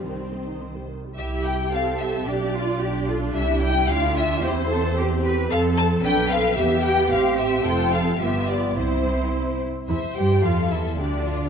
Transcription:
0.00 0.19 G3 soft
0.00 0.59 C4 soft
0.05 0.95 C2 soft
0.05 0.89 D#3 soft
0.05 0.18 D#3 soft
0.05 0.95 C5 soft
0.20 0.33 G3 soft
0.33 0.47 C4 soft
0.48 0.62 D#4 soft
0.62 0.75 C4 soft
0.76 0.90 G3 soft
0.89 1.03 D#3 soft
1.03 1.17 G3 soft
1.16 2.23 C2 medium
1.16 1.68 E4 medium
1.16 1.68 G4 medium
1.16 2.23 G4 medium
1.16 1.42 E5 medium
1.16 1.26 E5 medium
1.44 1.72 G5 medium
1.44 1.54 G5 medium
1.71 2.27 C4 medium
1.71 2.26 A4 medium
1.71 1.99 F5 medium
1.71 1.82 F5 medium
1.99 2.27 E5 medium
1.99 2.09 E5 medium
2.27 3.36 B1 medium
2.27 2.80 D4 medium
2.27 2.54 G4 medium
2.27 3.09 D5 medium
2.27 3.07 D5 medium
2.54 2.81 F4 medium
2.81 3.87 D4 medium
2.81 3.08 G4 medium
3.08 3.35 F4 medium
3.08 3.35 A4 medium
3.35 3.88 C2 medium
3.35 4.44 E4 medium
3.35 3.88 G4 medium
3.35 3.60 E5 medium
3.35 3.61 E5 medium
3.62 3.89 G5 medium
3.62 3.89 G5 loud
3.89 4.43 D2 medium
3.89 4.42 D4 medium
3.89 4.43 F4 medium
3.89 4.17 F5 loud
3.89 4.17 F5 medium
4.17 4.43 E5 loud
4.17 4.43 E5 medium
4.43 5.51 E2 medium
4.43 4.96 C4 medium
4.43 4.70 E4 medium
4.43 4.51 G4 medium
4.43 5.24 C5 medium
4.43 5.25 C5 medium
4.70 4.97 A4 medium
4.97 5.50 C4 medium
4.97 5.05 G4 medium
4.97 5.51 G4 medium
5.24 5.50 B4 medium
5.50 6.01 F2 medium
5.50 6.01 C4 medium
5.50 6.05 A4 medium
5.50 6.01 A4 medium
5.50 5.58 F5 loud
5.50 5.59 F5 medium
5.77 5.85 A5 loud
5.77 5.86 A5 loud
6.04 6.58 B1 medium
6.04 6.31 D4 medium
6.04 6.57 A4 medium
6.04 6.58 B4 medium
6.04 6.30 G5 medium
6.04 6.31 G5 loud
6.31 6.40 C4 medium
6.31 6.58 F5 medium
6.31 6.58 F5 loud
6.58 7.12 E2 medium
6.58 7.11 B3 medium
6.58 7.10 G4 medium
6.58 7.64 G4 medium
6.58 6.85 E5 loud
6.84 7.11 G5 medium
6.84 7.11 G5 loud
7.11 7.66 A1 medium
7.11 7.65 C4 medium
7.11 7.65 G4 medium
7.11 7.38 F5 medium
7.11 7.20 F5 loud
7.38 7.65 E5 loud
7.38 7.66 E5 medium
7.65 8.17 F1 medium
7.65 8.17 C4 medium
7.65 8.18 F4 medium
7.65 8.21 A4 medium
7.65 7.93 G5 loud
7.65 7.94 G5 medium
7.93 8.21 F5 medium
7.93 8.22 F5 medium
8.21 8.77 G1 medium
8.21 8.78 B3 medium
8.21 8.76 F4 medium
8.21 8.77 G4 medium
8.21 8.49 E5 medium
8.21 8.50 E5 medium
8.49 8.77 D5 medium
8.49 8.78 D5 medium
8.77 9.69 C2 medium
8.77 9.69 C4 medium
8.77 9.60 E4 medium
8.77 9.69 E4 medium
8.77 9.60 C5 medium
9.89 9.97 E2 medium
9.89 9.97 E3 medium
9.89 9.97 E4 medium
9.89 10.40 C5 medium
9.89 10.14 E5 medium
10.16 10.43 G2 medium
10.16 10.43 G3 medium
10.16 10.43 G4 medium
10.16 10.44 G5 medium
10.43 10.70 F2 medium
10.43 10.71 F3 medium
10.43 10.71 F4 medium
10.43 10.98 A4 medium
10.43 10.71 F5 medium
10.70 10.98 E2 medium
10.70 10.98 E3 medium
10.70 10.79 E4 medium
10.70 10.98 E5 medium
10.97 11.49 D2 medium
10.97 11.49 D3 medium
10.97 11.49 D4 medium
10.97 11.25 G4 medium
10.97 11.49 D5 medium
11.25 11.49 F4 medium

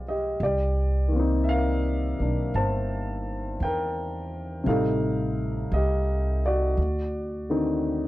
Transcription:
0.00 0.35 B1 medium
0.00 0.39 F3 soft
0.00 0.41 G3 soft
0.00 0.40 G#3 soft
0.00 0.40 B3 soft
0.00 0.13 D5 medium
0.08 0.40 G4 soft
0.08 0.42 D#5 medium
0.40 2.15 C2 medium
0.40 1.47 D5 medium
0.44 1.40 G4 soft
1.08 4.63 D#3 soft
1.08 2.17 A#3 soft
1.16 4.67 C4 soft
1.16 4.67 D#4 medium
1.44 1.47 E5 soft
1.49 2.51 A#4 medium
1.49 2.50 F5 medium
2.19 2.51 B1 soft
2.19 4.65 A#3 soft
2.19 4.67 D4 soft
2.54 3.56 G1 medium
2.54 3.57 C5 medium
2.54 3.56 A5 medium
3.60 4.62 E2 medium
3.60 4.70 G5 medium
3.64 4.64 A#4 medium
4.64 5.68 A1 medium
4.64 6.77 C3 soft
4.64 6.78 G3 soft
4.64 6.78 A3 soft
4.64 5.75 F5 medium
4.69 6.79 D#4 medium
4.69 5.69 A4 medium
5.72 6.73 C2 medium
5.72 6.41 G4 soft
5.72 6.41 D#5 medium
6.46 8.08 F#4 soft
6.46 8.08 D5 medium
6.77 8.08 D2 medium
7.50 8.08 D3 soft
7.50 8.08 D#3 soft
7.50 8.08 C4 soft
7.50 8.08 D#4 soft

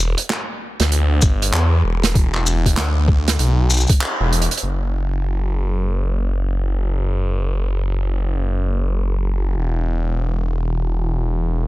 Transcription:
0.00 0.15 E1 loud
0.18 closed hi-hat medium
0.30 clap loud
0.30 snare medium
0.80 1.20 D2 loud
0.80 snare soft
0.80 closed hi-hat medium
0.92 closed hi-hat medium
1.22 1.52 G1 loud
1.22 kick loud
1.22 shaker medium
1.42 closed hi-hat medium
1.53 1.82 E2 loud
1.53 clap loud
1.53 closed hi-hat medium
1.84 2.75 E1 loud
2.03 snare medium
2.03 closed hi-hat medium
2.15 kick loud
2.15 closed hi-hat medium
2.34 clap soft
2.46 shaker medium
2.66 kick medium
2.66 closed hi-hat medium
2.77 3.37 D2 loud
2.77 clap loud
2.77 snare medium
2.77 closed hi-hat medium
3.08 kick loud
3.28 snare medium
3.28 closed hi-hat medium
3.39 3.86 B1 loud
3.39 closed hi-hat medium
3.70 shaker medium
3.74 shaker medium
3.77 shaker soft
3.80 shaker soft
3.87 kick loud
3.87 closed hi-hat medium
3.87 shaker soft
4.01 clap loud
4.01 closed hi-hat medium
4.20 4.48 E1 loud
4.33 closed hi-hat medium
4.42 closed hi-hat medium
4.51 closed hi-hat medium
4.57 closed hi-hat medium
4.63 9.55 F#1 medium
9.57 11.67 E1 medium

